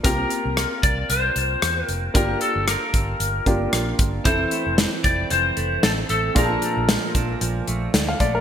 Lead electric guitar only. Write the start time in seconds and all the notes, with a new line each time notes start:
0.05 A#4
0.84 D5
1.10 C5
1.85 A#4
2.15 A#4
2.42 A4
2.68 A#4
4.26 C5
5.04 D5
5.31 C5
5.84 A4
6.10 A4
6.37 A#4